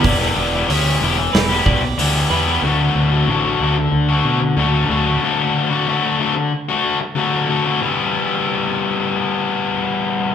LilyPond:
<<
  \new Staff \with { instrumentName = "Clean electric guitar" } { \time 4/4 \key e \minor \tempo 4 = 93 d''4 cis''4 b'8 d''4 b'8 | r1 | r1 | r1 | }
  \new Staff \with { instrumentName = "Distorted electric guitar" } { \time 4/4 \key e \minor <e b e' g'>8. <b e' g'>16 <e b e' g'>8 <e b e' g'>8. <b e' g'>8. <e b e' g'>8 <e b e' g'>16 <b e' g'>16 | <d fis a d' fis'>8. <a d' fis'>16 <d fis a d' fis'>8 <fis a d' fis'>8. <a d' fis'>8. <d fis a d' fis'>8 <fis a d' fis'>16 <a d' fis'>16 | <d fis a d' fis'>8. <a d' fis'>16 <d fis a d' fis'>8 <fis a d' fis'>8. <a d' fis'>8. <d fis a d' fis'>8 <fis a d' fis'>16 <a d' fis'>16 | <e g b e'>1 | }
  \new Staff \with { instrumentName = "Fingered electric bass" } { \clef bass \time 4/4 \key e \minor e,,8 e,,8 d,8 e,,8 e,,8 b,,8 d,8 e,8 | d,8 d,8 a,,8 d,8 d,8 b,8 d,8 d,8 | r1 | r1 | }
  \new DrumStaff \with { instrumentName = "Drums" } \drummode { \time 4/4 <hho bd>16 sn8. hho4 <hho sn>8 bd8 hho4 | r4 r4 r4 r4 | r4 r4 r4 r4 | r4 r4 r4 r4 | }
>>